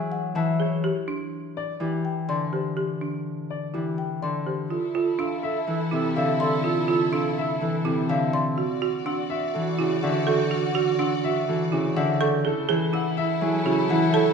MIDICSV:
0, 0, Header, 1, 7, 480
1, 0, Start_track
1, 0, Tempo, 483871
1, 830, Time_signature, 4, 2, 24, 8
1, 14218, End_track
2, 0, Start_track
2, 0, Title_t, "Xylophone"
2, 0, Program_c, 0, 13
2, 115, Note_on_c, 0, 78, 56
2, 356, Note_on_c, 0, 81, 67
2, 424, Note_off_c, 0, 78, 0
2, 664, Note_off_c, 0, 81, 0
2, 2032, Note_on_c, 0, 79, 47
2, 2270, Note_on_c, 0, 84, 61
2, 2343, Note_off_c, 0, 79, 0
2, 2582, Note_off_c, 0, 84, 0
2, 3950, Note_on_c, 0, 79, 45
2, 4192, Note_on_c, 0, 84, 55
2, 4262, Note_off_c, 0, 79, 0
2, 4503, Note_off_c, 0, 84, 0
2, 5152, Note_on_c, 0, 88, 55
2, 5463, Note_off_c, 0, 88, 0
2, 6111, Note_on_c, 0, 77, 52
2, 6350, Note_on_c, 0, 84, 68
2, 6422, Note_off_c, 0, 77, 0
2, 6662, Note_off_c, 0, 84, 0
2, 7070, Note_on_c, 0, 88, 55
2, 7382, Note_off_c, 0, 88, 0
2, 8029, Note_on_c, 0, 77, 59
2, 8268, Note_on_c, 0, 84, 74
2, 8342, Note_off_c, 0, 77, 0
2, 8581, Note_off_c, 0, 84, 0
2, 8988, Note_on_c, 0, 88, 58
2, 9301, Note_off_c, 0, 88, 0
2, 9948, Note_on_c, 0, 78, 60
2, 10194, Note_on_c, 0, 85, 71
2, 10262, Note_off_c, 0, 78, 0
2, 10503, Note_off_c, 0, 85, 0
2, 10906, Note_on_c, 0, 88, 64
2, 11221, Note_off_c, 0, 88, 0
2, 11870, Note_on_c, 0, 78, 64
2, 12109, Note_on_c, 0, 85, 80
2, 12182, Note_off_c, 0, 78, 0
2, 12422, Note_off_c, 0, 85, 0
2, 12832, Note_on_c, 0, 88, 65
2, 13143, Note_off_c, 0, 88, 0
2, 13790, Note_on_c, 0, 78, 65
2, 14026, Note_on_c, 0, 81, 78
2, 14102, Note_off_c, 0, 78, 0
2, 14218, Note_off_c, 0, 81, 0
2, 14218, End_track
3, 0, Start_track
3, 0, Title_t, "Grand piano"
3, 0, Program_c, 1, 0
3, 0, Note_on_c, 1, 68, 59
3, 185, Note_off_c, 1, 68, 0
3, 360, Note_on_c, 1, 76, 67
3, 605, Note_on_c, 1, 73, 51
3, 666, Note_off_c, 1, 76, 0
3, 907, Note_off_c, 1, 73, 0
3, 1556, Note_on_c, 1, 74, 69
3, 1805, Note_on_c, 1, 67, 52
3, 1864, Note_off_c, 1, 74, 0
3, 2107, Note_off_c, 1, 67, 0
3, 2273, Note_on_c, 1, 74, 58
3, 2511, Note_on_c, 1, 72, 44
3, 2583, Note_off_c, 1, 74, 0
3, 2822, Note_off_c, 1, 72, 0
3, 3476, Note_on_c, 1, 74, 55
3, 3711, Note_on_c, 1, 67, 47
3, 3784, Note_off_c, 1, 74, 0
3, 4023, Note_off_c, 1, 67, 0
3, 4189, Note_on_c, 1, 74, 55
3, 4429, Note_on_c, 1, 72, 42
3, 4502, Note_off_c, 1, 74, 0
3, 4742, Note_off_c, 1, 72, 0
3, 5150, Note_on_c, 1, 77, 54
3, 5387, Note_on_c, 1, 76, 72
3, 5462, Note_off_c, 1, 77, 0
3, 5633, Note_on_c, 1, 69, 50
3, 5701, Note_off_c, 1, 76, 0
3, 5943, Note_off_c, 1, 69, 0
3, 6111, Note_on_c, 1, 76, 72
3, 6356, Note_on_c, 1, 74, 54
3, 6422, Note_off_c, 1, 76, 0
3, 6664, Note_off_c, 1, 74, 0
3, 7075, Note_on_c, 1, 77, 50
3, 7318, Note_on_c, 1, 76, 73
3, 7384, Note_off_c, 1, 77, 0
3, 7549, Note_on_c, 1, 69, 51
3, 7625, Note_off_c, 1, 76, 0
3, 7862, Note_off_c, 1, 69, 0
3, 8028, Note_on_c, 1, 76, 69
3, 8267, Note_on_c, 1, 74, 53
3, 8341, Note_off_c, 1, 76, 0
3, 8581, Note_off_c, 1, 74, 0
3, 8986, Note_on_c, 1, 78, 57
3, 9224, Note_on_c, 1, 76, 76
3, 9301, Note_off_c, 1, 78, 0
3, 9464, Note_on_c, 1, 69, 54
3, 9540, Note_off_c, 1, 76, 0
3, 9780, Note_off_c, 1, 69, 0
3, 9952, Note_on_c, 1, 76, 69
3, 10199, Note_on_c, 1, 74, 58
3, 10263, Note_off_c, 1, 76, 0
3, 10505, Note_off_c, 1, 74, 0
3, 10909, Note_on_c, 1, 78, 61
3, 11151, Note_on_c, 1, 76, 78
3, 11222, Note_off_c, 1, 78, 0
3, 11399, Note_on_c, 1, 69, 65
3, 11462, Note_off_c, 1, 76, 0
3, 11705, Note_off_c, 1, 69, 0
3, 11866, Note_on_c, 1, 76, 76
3, 12121, Note_on_c, 1, 74, 60
3, 12181, Note_off_c, 1, 76, 0
3, 12363, Note_on_c, 1, 69, 82
3, 12426, Note_off_c, 1, 74, 0
3, 12667, Note_off_c, 1, 69, 0
3, 12843, Note_on_c, 1, 78, 61
3, 13067, Note_on_c, 1, 76, 87
3, 13147, Note_off_c, 1, 78, 0
3, 13312, Note_on_c, 1, 68, 61
3, 13381, Note_off_c, 1, 76, 0
3, 13623, Note_off_c, 1, 68, 0
3, 13791, Note_on_c, 1, 76, 76
3, 14044, Note_on_c, 1, 73, 58
3, 14103, Note_off_c, 1, 76, 0
3, 14218, Note_off_c, 1, 73, 0
3, 14218, End_track
4, 0, Start_track
4, 0, Title_t, "String section"
4, 0, Program_c, 2, 48
4, 4672, Note_on_c, 2, 69, 56
4, 4673, Note_on_c, 2, 64, 61
4, 8231, Note_off_c, 2, 69, 0
4, 8232, Note_off_c, 2, 64, 0
4, 8520, Note_on_c, 2, 66, 63
4, 8520, Note_on_c, 2, 74, 59
4, 12075, Note_off_c, 2, 66, 0
4, 12076, Note_off_c, 2, 74, 0
4, 12346, Note_on_c, 2, 69, 68
4, 12347, Note_on_c, 2, 64, 66
4, 14218, Note_off_c, 2, 64, 0
4, 14218, Note_off_c, 2, 69, 0
4, 14218, End_track
5, 0, Start_track
5, 0, Title_t, "Clarinet"
5, 0, Program_c, 3, 71
5, 4685, Note_on_c, 3, 69, 30
5, 4848, Note_off_c, 3, 69, 0
5, 4914, Note_on_c, 3, 69, 37
5, 5080, Note_off_c, 3, 69, 0
5, 5146, Note_on_c, 3, 69, 47
5, 5315, Note_off_c, 3, 69, 0
5, 5389, Note_on_c, 3, 69, 53
5, 5557, Note_off_c, 3, 69, 0
5, 5629, Note_on_c, 3, 69, 55
5, 5798, Note_off_c, 3, 69, 0
5, 5864, Note_on_c, 3, 69, 61
5, 6034, Note_off_c, 3, 69, 0
5, 6107, Note_on_c, 3, 69, 66
5, 6276, Note_off_c, 3, 69, 0
5, 6347, Note_on_c, 3, 69, 64
5, 6516, Note_off_c, 3, 69, 0
5, 6585, Note_on_c, 3, 69, 65
5, 6755, Note_off_c, 3, 69, 0
5, 6827, Note_on_c, 3, 69, 64
5, 6996, Note_off_c, 3, 69, 0
5, 7067, Note_on_c, 3, 69, 56
5, 7236, Note_off_c, 3, 69, 0
5, 7308, Note_on_c, 3, 69, 58
5, 7477, Note_off_c, 3, 69, 0
5, 7544, Note_on_c, 3, 69, 44
5, 7714, Note_off_c, 3, 69, 0
5, 7792, Note_on_c, 3, 69, 39
5, 7960, Note_off_c, 3, 69, 0
5, 8025, Note_on_c, 3, 69, 34
5, 8195, Note_off_c, 3, 69, 0
5, 8508, Note_on_c, 3, 66, 33
5, 8677, Note_off_c, 3, 66, 0
5, 8743, Note_on_c, 3, 66, 42
5, 8913, Note_off_c, 3, 66, 0
5, 8990, Note_on_c, 3, 66, 46
5, 9158, Note_off_c, 3, 66, 0
5, 9225, Note_on_c, 3, 66, 57
5, 9395, Note_off_c, 3, 66, 0
5, 9466, Note_on_c, 3, 66, 58
5, 9636, Note_off_c, 3, 66, 0
5, 9706, Note_on_c, 3, 66, 64
5, 9876, Note_off_c, 3, 66, 0
5, 9951, Note_on_c, 3, 66, 73
5, 10118, Note_off_c, 3, 66, 0
5, 10190, Note_on_c, 3, 66, 67
5, 10358, Note_off_c, 3, 66, 0
5, 10426, Note_on_c, 3, 66, 69
5, 10596, Note_off_c, 3, 66, 0
5, 10663, Note_on_c, 3, 66, 71
5, 10833, Note_off_c, 3, 66, 0
5, 10909, Note_on_c, 3, 66, 65
5, 11077, Note_off_c, 3, 66, 0
5, 11157, Note_on_c, 3, 66, 61
5, 11323, Note_off_c, 3, 66, 0
5, 11392, Note_on_c, 3, 66, 51
5, 11559, Note_off_c, 3, 66, 0
5, 11623, Note_on_c, 3, 66, 41
5, 11794, Note_off_c, 3, 66, 0
5, 11876, Note_on_c, 3, 66, 38
5, 12042, Note_off_c, 3, 66, 0
5, 12355, Note_on_c, 3, 64, 35
5, 12521, Note_off_c, 3, 64, 0
5, 12584, Note_on_c, 3, 64, 46
5, 12754, Note_off_c, 3, 64, 0
5, 12827, Note_on_c, 3, 64, 54
5, 12996, Note_off_c, 3, 64, 0
5, 13063, Note_on_c, 3, 64, 65
5, 13233, Note_off_c, 3, 64, 0
5, 13304, Note_on_c, 3, 64, 64
5, 13474, Note_off_c, 3, 64, 0
5, 13548, Note_on_c, 3, 64, 72
5, 13717, Note_off_c, 3, 64, 0
5, 13793, Note_on_c, 3, 64, 78
5, 13960, Note_off_c, 3, 64, 0
5, 14028, Note_on_c, 3, 64, 73
5, 14197, Note_off_c, 3, 64, 0
5, 14218, End_track
6, 0, Start_track
6, 0, Title_t, "Marimba"
6, 0, Program_c, 4, 12
6, 592, Note_on_c, 4, 68, 54
6, 833, Note_on_c, 4, 67, 69
6, 903, Note_off_c, 4, 68, 0
6, 1070, Note_on_c, 4, 62, 53
6, 1143, Note_off_c, 4, 67, 0
6, 1382, Note_off_c, 4, 62, 0
6, 1790, Note_on_c, 4, 64, 47
6, 2102, Note_off_c, 4, 64, 0
6, 2508, Note_on_c, 4, 67, 50
6, 2734, Note_off_c, 4, 67, 0
6, 2746, Note_on_c, 4, 67, 53
6, 2990, Note_on_c, 4, 62, 44
6, 3061, Note_off_c, 4, 67, 0
6, 3302, Note_off_c, 4, 62, 0
6, 3708, Note_on_c, 4, 64, 42
6, 4021, Note_off_c, 4, 64, 0
6, 4429, Note_on_c, 4, 67, 44
6, 4667, Note_on_c, 4, 65, 51
6, 4742, Note_off_c, 4, 67, 0
6, 4896, Note_off_c, 4, 65, 0
6, 4908, Note_on_c, 4, 65, 68
6, 5146, Note_on_c, 4, 62, 54
6, 5222, Note_off_c, 4, 65, 0
6, 5461, Note_off_c, 4, 62, 0
6, 5866, Note_on_c, 4, 64, 56
6, 6181, Note_off_c, 4, 64, 0
6, 6586, Note_on_c, 4, 65, 55
6, 6815, Note_off_c, 4, 65, 0
6, 6827, Note_on_c, 4, 65, 71
6, 7069, Note_on_c, 4, 62, 55
6, 7141, Note_off_c, 4, 65, 0
6, 7382, Note_off_c, 4, 62, 0
6, 7787, Note_on_c, 4, 64, 56
6, 8101, Note_off_c, 4, 64, 0
6, 8508, Note_on_c, 4, 66, 54
6, 8736, Note_off_c, 4, 66, 0
6, 8748, Note_on_c, 4, 66, 74
6, 8986, Note_on_c, 4, 62, 56
6, 9062, Note_off_c, 4, 66, 0
6, 9301, Note_off_c, 4, 62, 0
6, 9707, Note_on_c, 4, 64, 59
6, 10021, Note_off_c, 4, 64, 0
6, 10185, Note_on_c, 4, 69, 72
6, 10426, Note_on_c, 4, 66, 58
6, 10500, Note_off_c, 4, 69, 0
6, 10650, Note_off_c, 4, 66, 0
6, 10662, Note_on_c, 4, 66, 78
6, 10903, Note_on_c, 4, 62, 63
6, 10979, Note_off_c, 4, 66, 0
6, 11220, Note_off_c, 4, 62, 0
6, 11626, Note_on_c, 4, 64, 63
6, 11941, Note_off_c, 4, 64, 0
6, 12108, Note_on_c, 4, 69, 82
6, 12348, Note_on_c, 4, 68, 63
6, 12422, Note_off_c, 4, 69, 0
6, 12575, Note_off_c, 4, 68, 0
6, 12587, Note_on_c, 4, 68, 82
6, 12826, Note_on_c, 4, 64, 66
6, 12901, Note_off_c, 4, 68, 0
6, 13141, Note_off_c, 4, 64, 0
6, 13549, Note_on_c, 4, 66, 63
6, 13862, Note_off_c, 4, 66, 0
6, 14025, Note_on_c, 4, 69, 83
6, 14218, Note_off_c, 4, 69, 0
6, 14218, End_track
7, 0, Start_track
7, 0, Title_t, "Harp"
7, 0, Program_c, 5, 46
7, 0, Note_on_c, 5, 52, 75
7, 0, Note_on_c, 5, 54, 56
7, 336, Note_off_c, 5, 52, 0
7, 348, Note_on_c, 5, 52, 74
7, 848, Note_off_c, 5, 52, 0
7, 850, Note_off_c, 5, 54, 0
7, 1785, Note_on_c, 5, 52, 52
7, 2267, Note_on_c, 5, 50, 62
7, 3699, Note_off_c, 5, 52, 0
7, 3710, Note_on_c, 5, 52, 45
7, 4187, Note_off_c, 5, 50, 0
7, 4199, Note_on_c, 5, 50, 58
7, 4690, Note_off_c, 5, 52, 0
7, 4694, Note_off_c, 5, 50, 0
7, 5629, Note_on_c, 5, 52, 55
7, 5874, Note_on_c, 5, 48, 54
7, 6114, Note_on_c, 5, 50, 68
7, 7540, Note_off_c, 5, 52, 0
7, 7552, Note_on_c, 5, 52, 55
7, 7773, Note_off_c, 5, 48, 0
7, 7785, Note_on_c, 5, 48, 59
7, 8018, Note_off_c, 5, 50, 0
7, 8030, Note_on_c, 5, 50, 75
7, 8527, Note_off_c, 5, 48, 0
7, 8529, Note_off_c, 5, 50, 0
7, 8530, Note_off_c, 5, 52, 0
7, 9477, Note_on_c, 5, 52, 58
7, 9714, Note_on_c, 5, 49, 59
7, 9953, Note_on_c, 5, 50, 75
7, 11379, Note_off_c, 5, 52, 0
7, 11391, Note_on_c, 5, 52, 60
7, 11620, Note_off_c, 5, 49, 0
7, 11632, Note_on_c, 5, 49, 61
7, 11857, Note_off_c, 5, 50, 0
7, 11869, Note_on_c, 5, 50, 82
7, 12369, Note_off_c, 5, 50, 0
7, 12370, Note_off_c, 5, 52, 0
7, 12371, Note_off_c, 5, 49, 0
7, 12589, Note_on_c, 5, 52, 65
7, 13305, Note_on_c, 5, 54, 65
7, 13542, Note_on_c, 5, 49, 67
7, 13770, Note_off_c, 5, 52, 0
7, 13782, Note_on_c, 5, 52, 81
7, 14218, Note_off_c, 5, 49, 0
7, 14218, Note_off_c, 5, 52, 0
7, 14218, Note_off_c, 5, 54, 0
7, 14218, End_track
0, 0, End_of_file